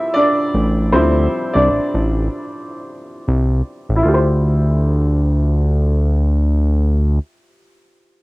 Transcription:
0.00 0.91 F3 medium
0.00 0.92 G3 soft
0.00 0.93 C4 medium
0.00 0.93 E4 medium
0.00 0.92 C5 medium
0.00 4.06 E5 medium
0.14 0.89 D4 medium
0.14 0.94 D5 medium
0.54 0.95 A1 medium
0.92 1.28 D2 medium
0.92 1.28 F3 soft
0.92 2.06 G3 soft
0.92 1.51 C4 medium
0.92 2.06 E4 medium
0.92 1.56 C5 medium
1.54 1.69 C2 medium
1.54 2.68 D4 medium
1.54 2.67 D5 medium
1.71 1.80 A1 soft
1.94 2.29 A1 medium
3.28 3.62 C2 medium
3.89 4.03 A1 medium
3.96 7.10 E4 medium
4.03 7.19 D2 medium
4.03 7.17 F4 medium
4.08 7.22 G4 medium
4.14 7.28 C5 medium

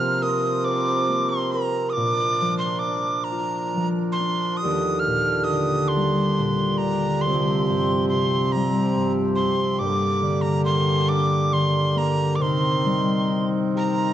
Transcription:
0.00 1.93 C3 medium
0.00 2.01 C3 soft
0.00 4.57 F3 medium
0.00 1.09 A#3 soft
0.00 1.93 C4 medium
0.00 1.93 C4 soft
0.00 0.61 F4 soft
0.00 4.58 A#4 medium
0.00 0.24 F6 medium
0.22 1.54 A#4 soft
0.22 0.66 D#6 medium
0.64 2.63 C5 soft
0.64 1.30 D6 medium
1.09 4.31 A#3 soft
1.29 1.53 C6 medium
1.52 3.66 A#4 soft
1.52 1.91 A#5 medium
1.90 2.58 D6 medium
1.90 1.94 D#6 medium
1.97 4.67 A#2 soft
1.97 4.60 D4 medium
2.41 3.75 F3 soft
2.58 2.81 C6 medium
2.79 3.25 D6 medium
2.87 4.19 D4 soft
3.24 3.88 A#5 medium
3.32 5.84 F4 soft
3.77 4.67 F3 soft
4.12 4.58 C6 medium
4.19 4.71 D4 soft
4.57 5.01 D#6 medium
4.62 7.32 D#2 medium
4.62 7.24 D3 medium
4.62 7.24 D4 soft
4.62 7.24 G4 medium
4.99 5.45 F6 medium
5.07 5.55 A#2 soft
5.44 5.90 D#6 medium
5.51 6.44 D3 soft
5.88 6.79 C6 medium
5.96 6.88 G3 soft
6.39 6.88 A#2 soft
6.78 7.32 D3 soft
6.78 7.23 A#5 medium
7.21 8.08 C6 medium
7.26 9.87 C2 soft
7.26 9.80 C3 medium
7.26 9.80 F3 medium
7.26 9.80 C4 medium
7.26 12.35 G4 medium
7.69 8.17 G2 soft
8.09 8.54 C6 medium
8.13 9.02 C3 soft
8.52 9.87 G3 soft
8.52 9.13 A#5 medium
8.96 9.45 G2 soft
9.35 9.87 C3 soft
9.35 9.80 C6 medium
9.79 12.44 G2 medium
9.79 12.36 D3 medium
9.79 12.36 A#3 medium
9.79 10.43 D6 medium
10.22 11.51 D3 soft
10.41 10.64 A#5 medium
10.65 11.95 A#3 soft
10.65 11.10 C6 medium
11.09 13.35 D4 medium
11.09 11.55 D6 medium
11.52 12.44 D3 soft
11.52 11.99 C6 medium
11.96 14.13 A#3 soft
11.96 12.37 A#5 medium
12.35 14.13 C3 soft
12.35 14.13 D#3 medium
12.35 14.13 C4 medium
12.35 14.13 A#4 medium
12.35 12.43 D6 soft
12.42 13.49 C6 medium
12.86 14.13 G3 soft
13.29 14.13 D#4 soft
13.75 14.13 G4 soft
13.75 14.13 A#5 medium

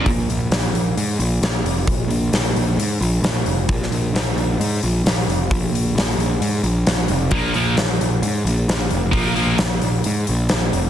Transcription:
0.06 0.25 A#1 medium
0.06 kick loud
0.06 open hi-hat medium
0.29 0.48 A#1 medium
0.29 open hi-hat soft
0.52 0.71 A#1 medium
0.52 snare loud
0.52 open hi-hat medium
0.73 0.93 A#1 medium
0.73 open hi-hat soft
0.97 1.16 G#2 medium
0.97 open hi-hat medium
1.19 1.38 A#1 medium
1.19 open hi-hat medium
1.42 1.61 A#1 medium
1.42 snare loud
1.42 open hi-hat medium
1.65 1.84 F1 medium
1.65 open hi-hat medium
1.87 2.07 A#1 medium
1.87 kick loud
1.87 open hi-hat medium
2.08 2.28 A#1 medium
2.08 open hi-hat soft
2.33 2.52 A#1 medium
2.33 snare loud
2.33 open hi-hat medium
2.56 2.75 A#1 medium
2.56 open hi-hat soft
2.77 2.97 G#2 medium
2.77 open hi-hat medium
3.01 3.20 A#1 medium
3.01 open hi-hat soft
3.22 3.42 A#1 medium
3.22 snare loud
3.22 open hi-hat medium
3.46 3.65 F1 medium
3.46 open hi-hat soft
3.68 3.88 A#1 medium
3.68 kick loud
3.68 open hi-hat medium
3.83 snare soft
3.91 4.11 A#1 medium
3.91 open hi-hat soft
4.14 4.33 A#1 medium
4.14 snare loud
4.14 open hi-hat medium
4.36 4.56 A#1 medium
4.36 open hi-hat soft
4.60 4.79 G#2 medium
4.60 open hi-hat medium
4.83 5.02 A#1 loud
4.83 open hi-hat soft
5.04 5.24 A#1 medium
5.04 snare loud
5.04 open hi-hat medium
5.28 5.47 F1 medium
5.28 open hi-hat soft
5.51 5.70 A#1 medium
5.51 kick loud
5.51 open hi-hat medium
5.72 5.92 A#1 medium
5.72 open hi-hat medium
5.95 6.15 A#1 medium
5.95 snare loud
5.95 open hi-hat medium
6.17 6.37 A#1 medium
6.17 open hi-hat medium
6.41 6.60 G#2 medium
6.41 open hi-hat medium
6.63 6.83 A#1 medium
6.63 open hi-hat soft
6.87 7.06 A#1 medium
6.87 snare loud
6.87 open hi-hat medium
7.08 7.29 F1 medium
7.08 open hi-hat soft
7.31 7.51 A#1 loud
7.31 7.51 A#2 medium
7.31 7.51 F3 medium
7.31 7.51 A#3 loud
7.31 kick loud
7.31 open hi-hat medium
7.54 7.75 A#1 medium
7.54 7.74 A#2 medium
7.54 7.74 F3 medium
7.54 7.74 A#3 loud
7.54 open hi-hat soft
7.77 7.97 A#1 medium
7.77 snare loud
7.77 open hi-hat medium
8.01 8.20 A#1 medium
8.01 open hi-hat soft
8.22 8.42 G#2 medium
8.22 open hi-hat medium
8.45 8.64 A#1 loud
8.45 open hi-hat soft
8.68 8.88 A#1 medium
8.68 snare loud
8.68 open hi-hat medium
8.91 9.10 F1 medium
8.91 open hi-hat soft
9.12 9.33 A#1 medium
9.12 9.31 A#2 loud
9.12 9.31 F3 medium
9.12 9.32 A#3 loud
9.12 kick loud
9.12 open hi-hat medium
9.35 9.55 A#1 medium
9.35 9.54 A#2 medium
9.35 9.55 F3 medium
9.35 9.55 A#3 medium
9.35 open hi-hat soft
9.58 9.78 A#1 medium
9.58 snare loud
9.58 open hi-hat medium
9.82 10.01 A#1 medium
9.82 open hi-hat soft
10.04 10.24 G#2 medium
10.04 open hi-hat medium
10.27 10.47 A#1 loud
10.27 open hi-hat medium
10.49 10.70 A#1 medium
10.49 snare loud
10.49 open hi-hat medium
10.73 10.90 F1 medium
10.73 open hi-hat medium

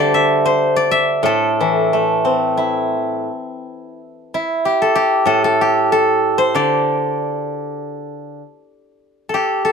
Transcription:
0.00 1.25 D3 medium
0.00 0.62 G3 medium
0.00 1.27 G4 medium
0.00 1.25 A4 medium
0.00 0.45 C5 medium
0.00 0.76 D5 medium
0.00 0.14 E5 medium
0.14 0.91 E5 medium
0.45 2.44 C5 medium
0.76 2.61 D5 medium
0.91 2.64 E5 medium
1.23 3.26 A2 medium
1.23 3.59 A4 medium
1.60 2.93 E3 soft
1.93 3.28 A3 soft
2.25 3.64 C4 soft
2.57 3.98 E4 soft
4.34 6.95 E4 soft
4.65 4.95 G4 medium
4.82 5.26 A4 medium
4.95 5.61 G4 medium
5.25 6.55 A2 soft
5.25 5.44 A4 medium
5.44 5.92 A4 medium
5.61 7.97 G4 medium
5.92 8.12 A4 medium
6.38 8.36 C5 medium
6.55 8.40 D3 soft
6.55 8.40 D5 medium
9.29 9.64 A4 soft
9.34 9.72 G4 medium
9.65 9.72 A4 medium

